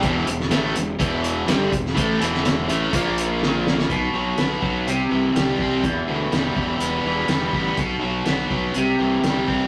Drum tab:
HH |x-x-x-x-x-x-x-x-|x-x-x-x-x-x-----|x---x---x---x---|x---x---x---x---|
SD |---oo-------o--o|---oo-------o-oo|----o-------o---|----o-------o---|
BD |o-------o-----o-|o-------o-------|o-----o-------o-|o-----o-------o-|

HH |x---x---x---x---|
SD |----o-------o---|
BD |o-----o-------o-|